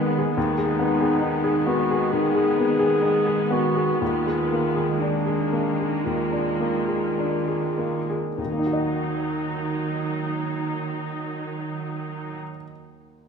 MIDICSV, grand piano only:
0, 0, Header, 1, 2, 480
1, 0, Start_track
1, 0, Key_signature, -6, "minor"
1, 0, Tempo, 851064
1, 204, Time_signature, 4, 2, 24, 8
1, 690, Tempo, 904977
1, 1650, Tempo, 988468
1, 2610, Tempo, 1041667
1, 3090, Tempo, 1129944
1, 3570, Tempo, 1204819
1, 4050, Tempo, 1121495
1, 6146, End_track
2, 0, Start_track
2, 0, Title_t, "Grand piano"
2, 0, Program_c, 0, 0
2, 0, Control_c, 0, 64, 127
2, 0, Note_on_c, 0, 51, 39
2, 0, Note_on_c, 0, 59, 40
2, 0, Note_on_c, 0, 63, 42
2, 0, Note_on_c, 0, 68, 39
2, 104, Note_off_c, 0, 68, 0
2, 104, Note_on_c, 0, 68, 40
2, 169, Note_off_c, 0, 59, 0
2, 210, Note_on_c, 0, 39, 50
2, 213, Note_off_c, 0, 68, 0
2, 216, Control_c, 0, 64, 0
2, 219, Note_off_c, 0, 63, 0
2, 220, Note_off_c, 0, 51, 0
2, 309, Control_c, 0, 64, 127
2, 324, Note_on_c, 0, 68, 37
2, 447, Note_on_c, 0, 59, 38
2, 518, Note_off_c, 0, 68, 0
2, 568, Note_on_c, 0, 68, 38
2, 642, Note_off_c, 0, 59, 0
2, 685, Note_on_c, 0, 63, 40
2, 761, Note_off_c, 0, 68, 0
2, 804, Note_on_c, 0, 68, 39
2, 875, Note_off_c, 0, 63, 0
2, 924, Note_on_c, 0, 59, 42
2, 994, Note_off_c, 0, 68, 0
2, 1051, Note_on_c, 0, 68, 40
2, 1115, Note_off_c, 0, 59, 0
2, 1144, Note_off_c, 0, 39, 0
2, 1171, Note_on_c, 0, 51, 39
2, 1239, Note_off_c, 0, 68, 0
2, 1285, Note_on_c, 0, 68, 37
2, 1360, Note_off_c, 0, 51, 0
2, 1411, Note_on_c, 0, 59, 38
2, 1478, Note_off_c, 0, 68, 0
2, 1523, Note_on_c, 0, 68, 36
2, 1604, Note_off_c, 0, 59, 0
2, 1643, Note_on_c, 0, 63, 39
2, 1717, Note_off_c, 0, 68, 0
2, 1761, Note_on_c, 0, 68, 37
2, 1833, Note_off_c, 0, 63, 0
2, 1880, Note_on_c, 0, 59, 35
2, 1953, Note_off_c, 0, 68, 0
2, 2000, Note_on_c, 0, 68, 34
2, 2074, Note_off_c, 0, 59, 0
2, 2122, Note_off_c, 0, 68, 0
2, 2126, Note_on_c, 0, 39, 45
2, 2133, Control_c, 0, 64, 0
2, 2246, Control_c, 0, 64, 127
2, 2246, Note_on_c, 0, 68, 34
2, 2374, Note_on_c, 0, 58, 35
2, 2439, Note_off_c, 0, 68, 0
2, 2490, Note_on_c, 0, 68, 34
2, 2565, Note_off_c, 0, 58, 0
2, 2613, Note_on_c, 0, 62, 35
2, 2682, Note_off_c, 0, 68, 0
2, 2726, Note_on_c, 0, 68, 33
2, 2800, Note_off_c, 0, 62, 0
2, 2846, Note_on_c, 0, 58, 29
2, 2918, Note_off_c, 0, 68, 0
2, 2971, Note_on_c, 0, 68, 31
2, 3040, Note_off_c, 0, 58, 0
2, 3072, Note_off_c, 0, 39, 0
2, 3094, Note_on_c, 0, 39, 33
2, 3160, Note_off_c, 0, 68, 0
2, 3202, Note_on_c, 0, 62, 27
2, 3325, Note_on_c, 0, 58, 28
2, 3395, Note_off_c, 0, 62, 0
2, 3442, Note_on_c, 0, 68, 25
2, 3520, Note_off_c, 0, 58, 0
2, 3569, Note_on_c, 0, 62, 26
2, 3639, Note_off_c, 0, 68, 0
2, 3689, Note_on_c, 0, 68, 25
2, 3763, Note_off_c, 0, 62, 0
2, 3809, Note_on_c, 0, 58, 26
2, 3888, Note_off_c, 0, 68, 0
2, 3934, Note_on_c, 0, 68, 24
2, 4002, Note_off_c, 0, 58, 0
2, 4035, Note_off_c, 0, 39, 0
2, 4047, Note_on_c, 0, 39, 25
2, 4049, Note_off_c, 0, 68, 0
2, 4060, Control_c, 0, 64, 0
2, 4078, Note_on_c, 0, 51, 23
2, 4108, Note_on_c, 0, 58, 25
2, 4135, Note_on_c, 0, 63, 25
2, 4147, Control_c, 0, 64, 127
2, 4169, Note_on_c, 0, 66, 23
2, 4197, Note_on_c, 0, 75, 27
2, 5745, Note_off_c, 0, 39, 0
2, 5777, Note_off_c, 0, 51, 0
2, 5806, Note_off_c, 0, 58, 0
2, 5834, Note_off_c, 0, 63, 0
2, 5867, Note_off_c, 0, 66, 0
2, 5896, Note_off_c, 0, 75, 0
2, 6146, End_track
0, 0, End_of_file